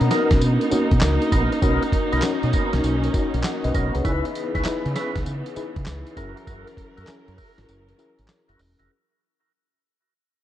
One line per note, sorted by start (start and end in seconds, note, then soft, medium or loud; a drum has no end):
0.00 0.09 B2 loud
0.00 4.01 A#3 medium
0.00 1.60 B3 medium
0.00 0.71 C#4 medium
0.00 4.06 D4 medium
0.00 0.71 D#4 medium
0.00 4.01 D#4 medium
0.00 0.72 F#4 medium
0.00 0.72 A#4 loud
0.00 closed hi-hat soft
0.11 0.32 B3 medium
0.11 0.32 D#4 medium
0.11 0.32 A#4 medium
0.11 snare medium
0.11 closed hi-hat medium
0.11 tambourine medium
0.31 0.39 B1 medium
0.31 kick medium
0.31 snare medium
0.31 closed hi-hat medium
0.41 0.57 B2 loud
0.41 closed hi-hat medium
0.41 tambourine medium
0.61 closed hi-hat medium
0.71 1.42 C#4 medium
0.71 1.42 D#4 medium
0.71 1.42 F#4 medium
0.71 1.43 A#4 medium
0.71 muted fingered electric bass stroke medium
0.71 closed hi-hat medium
0.71 tambourine medium
0.91 1.00 B2 loud
0.91 kick loud
0.91 closed hi-hat medium
1.01 1.17 C#2 loud
1.01 snare loud
1.01 clap loud
1.01 closed hi-hat medium
1.01 tambourine loud
1.22 closed hi-hat medium
1.32 1.48 A#1 medium
1.32 1.53 B3 medium
1.32 1.53 D#4 medium
1.32 1.53 A#4 medium
1.32 kick medium
1.32 closed hi-hat medium
1.32 tambourine medium
1.52 closed hi-hat medium
1.62 1.78 B1 loud
1.62 1.83 B3 loud
1.62 2.12 C#4 medium
1.62 4.02 C#4 medium
1.62 2.13 D#4 medium
1.62 1.83 D#4 medium
1.62 2.13 F#4 medium
1.62 1.83 A#4 loud
1.62 2.13 A#4 medium
1.62 kick loud
1.62 closed hi-hat medium
1.62 tambourine medium
1.82 closed hi-hat medium
1.92 kick medium
1.92 closed hi-hat medium
2.12 2.21 B1 medium
2.12 2.25 B3 medium
2.12 2.25 D#4 medium
2.12 2.25 A#4 medium
2.12 closed hi-hat medium
2.22 2.94 C#4 medium
2.22 2.94 D#4 medium
2.22 2.94 F#4 medium
2.22 2.94 A#4 medium
2.22 snare loud
2.22 clap loud
2.22 closed hi-hat medium
2.22 tambourine medium
2.43 2.51 B2 loud
2.43 closed hi-hat soft
2.53 2.74 B3 medium
2.53 2.74 D#4 medium
2.53 2.74 A#4 medium
2.53 kick medium
2.53 closed hi-hat medium
2.53 tambourine medium
2.73 2.81 B1 medium
2.73 snare medium
2.73 closed hi-hat medium
2.84 3.07 B1 loud
2.84 closed hi-hat medium
2.84 tambourine medium
3.04 closed hi-hat medium
3.13 3.85 C#4 medium
3.13 3.85 D#4 medium
3.13 3.85 F#4 medium
3.13 3.45 A#4 medium
3.13 kick loud
3.13 closed hi-hat medium
3.13 tambourine medium
3.34 3.42 A#1 medium
3.34 closed hi-hat medium
3.44 3.63 D#5 medium
3.44 3.63 F#5 medium
3.44 snare loud
3.44 clap loud
3.44 closed hi-hat medium
3.44 tambourine medium
3.64 3.72 B1 medium
3.64 3.74 B4 medium
3.64 3.74 D#5 medium
3.64 closed hi-hat medium
3.74 3.90 B1 medium
3.74 3.95 B3 medium
3.74 3.95 D#4 medium
3.74 3.96 A#4 medium
3.74 3.94 A#4 medium
3.74 3.93 C#5 medium
3.74 kick medium
3.74 closed hi-hat medium
3.74 tambourine medium
3.94 4.03 C2 medium
3.94 4.04 G#4 medium
3.94 4.11 B4 medium
3.94 closed hi-hat soft
4.04 4.20 C#2 loud
4.04 6.15 C#3 medium
4.04 8.86 E3 medium
4.04 6.15 B3 medium
4.04 4.26 C#4 loud
4.04 4.55 D#4 medium
4.04 4.55 E4 medium
4.04 4.26 E4 medium
4.04 4.55 G#4 medium
4.04 4.14 A#4 medium
4.04 4.26 B4 loud
4.04 kick loud
4.04 closed hi-hat medium
4.04 tambourine medium
4.12 4.59 B4 loud
4.25 closed hi-hat medium
4.35 closed hi-hat medium
4.55 4.63 C#2 medium
4.55 4.67 C#4 medium
4.55 4.67 E4 medium
4.55 4.67 B4 medium
4.55 kick medium
4.55 closed hi-hat medium
4.65 5.36 D#4 medium
4.65 5.36 E4 medium
4.65 5.36 G#4 medium
4.65 5.37 B4 loud
4.65 snare loud
4.65 clap loud
4.65 closed hi-hat medium
4.65 tambourine loud
4.86 4.93 C#3 loud
4.86 closed hi-hat soft
4.96 5.16 C#4 medium
4.96 5.17 E4 medium
4.96 5.17 B4 medium
4.96 snare medium
4.96 closed hi-hat medium
4.96 tambourine medium
5.16 5.24 C#2 medium
5.16 kick medium
5.16 snare medium
5.16 closed hi-hat medium
5.26 5.42 C#3 medium
5.26 closed hi-hat medium
5.26 tambourine medium
5.46 closed hi-hat medium
5.56 6.17 D#4 medium
5.56 6.16 E4 medium
5.56 6.16 G#4 medium
5.56 6.17 B4 medium
5.56 muted fingered electric bass stroke soft
5.56 closed hi-hat medium
5.56 tambourine medium
5.76 5.84 C#3 medium
5.76 kick loud
5.76 closed hi-hat soft
5.86 6.02 C#2 medium
5.86 snare loud
5.86 clap medium
5.86 closed hi-hat medium
5.86 tambourine loud
6.07 closed hi-hat medium
6.16 6.32 F#1 loud
6.16 8.87 F#3 medium
6.16 6.93 C#4 medium
6.16 6.38 E4 medium
6.16 6.93 E4 medium
6.16 6.38 F#4 medium
6.16 6.93 G#4 medium
6.16 8.87 A#4 medium
6.16 6.38 A#4 medium
6.16 6.94 A#4 loud
6.16 kick medium
6.16 closed hi-hat medium
6.16 tambourine medium
6.37 closed hi-hat medium
6.47 6.63 F#1 medium
6.47 6.68 E4 medium
6.47 6.68 F#4 medium
6.47 6.68 A#4 loud
6.47 kick loud
6.47 closed hi-hat medium
6.47 tambourine medium
6.67 closed hi-hat medium
6.77 kick medium
6.77 closed hi-hat medium
6.97 7.06 F#2 medium
6.97 7.09 E4 medium
6.97 7.10 F#4 medium
6.97 7.10 A#4 medium
6.97 closed hi-hat medium
7.07 7.78 C#4 medium
7.07 7.78 E4 medium
7.07 7.79 G#4 medium
7.07 7.79 A#4 loud
7.07 muted fingered electric bass stroke soft
7.07 snare loud
7.07 clap medium
7.07 closed hi-hat medium
7.07 tambourine loud
7.28 7.36 F#2 loud
7.28 closed hi-hat soft
7.38 7.59 E4 medium
7.38 7.59 F#4 medium
7.38 7.59 A#4 medium
7.38 kick medium
7.38 open hi-hat medium
7.38 tambourine medium
7.58 7.66 G#1 medium
7.58 snare medium
7.58 closed hi-hat medium
7.69 7.92 F#1 loud
7.69 closed hi-hat medium
7.69 tambourine medium
7.88 closed hi-hat medium
7.98 8.69 C#4 medium
7.98 8.70 E4 medium
7.98 8.70 G#4 medium
7.98 8.70 A#4 medium
7.98 closed hi-hat medium
7.98 tambourine medium
8.19 8.27 G#1 medium
8.19 closed hi-hat soft
8.28 snare loud
8.28 clap medium
8.28 closed hi-hat medium
8.28 tambourine loud
8.48 8.57 F#1 medium
8.48 8.61 E4 medium
8.48 8.61 F#4 medium
8.48 8.61 A#4 medium
8.48 closed hi-hat medium
8.59 8.75 E1 medium
8.59 open hi-hat medium
8.59 tambourine medium
8.79 8.87 F1 medium
8.79 8.91 E4 medium
8.79 8.91 F#4 medium
8.79 8.92 A#4 medium
8.79 closed hi-hat medium